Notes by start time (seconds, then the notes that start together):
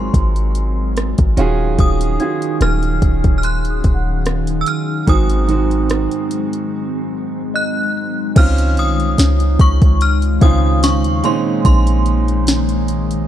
Already playing: G#1 G#2 F#3 G#3 C4 F4 G#4 A#4 C6
0.14 G#1, kick, closed hi-hat
0.36 closed hi-hat
0.55 closed hi-hat
0.97 cross-stick, closed hi-hat
1.18 G#1, kick, closed hi-hat
1.37 D#1 D#3 C#4 D#4 F4 F#4 G#4, closed hi-hat
1.79 D#1 D#6, kick, closed hi-hat
2.01 closed hi-hat
2.19 D#3 C#4 F4 F#4 G#4 G#6, closed hi-hat
2.42 closed hi-hat
2.61 D#1 F6, cross-stick, closed hi-hat
2.83 closed hi-hat
3.02 D#1, kick, closed hi-hat
3.24 D#1, kick, closed hi-hat
3.38 F6
3.43 C6 F#6, closed hi-hat
3.65 closed hi-hat
3.70 D#6
3.84 D#1, kick, closed hi-hat
3.94 F#5
4.26 cross-stick, closed hi-hat
4.47 closed hi-hat
4.61 E6
4.66 F6, closed hi-hat
5.07 G#1 G#2 D#3 G#3 C4 F#4 G#5 D#6, kick, closed hi-hat
5.30 closed hi-hat
5.48 G#2 D#3 C4 F#4, closed hi-hat
5.71 closed hi-hat
5.90 cross-stick, closed hi-hat
6.11 closed hi-hat
6.31 closed hi-hat
6.53 closed hi-hat
7.54 D#5 F#6
8.36 C#2 D#3 G#3 C4 C#4 D#4 F4 F6, kick, closed hi-hat, crash
8.58 closed hi-hat
8.77 C2 D#6, closed hi-hat
9.00 closed hi-hat
9.18 C#2, snare, closed hi-hat
9.40 closed hi-hat
9.59 C#2 C#6, kick, closed hi-hat
9.82 C#2, kick, closed hi-hat
10.01 F6, closed hi-hat
10.22 closed hi-hat
10.41 C#2 C#3 C4 D#4 F4 D#6, kick, closed hi-hat
10.83 C#6, snare, closed hi-hat
11.04 D#2, closed hi-hat
11.23 A#2 G#3 A#3 C4 C#4 D#4 C6, closed hi-hat
11.65 A#1 C6, kick, closed hi-hat
11.87 closed hi-hat
12.06 closed hi-hat
12.28 closed hi-hat
12.47 snare, closed hi-hat
12.69 closed hi-hat
12.88 C5, closed hi-hat
13.11 closed hi-hat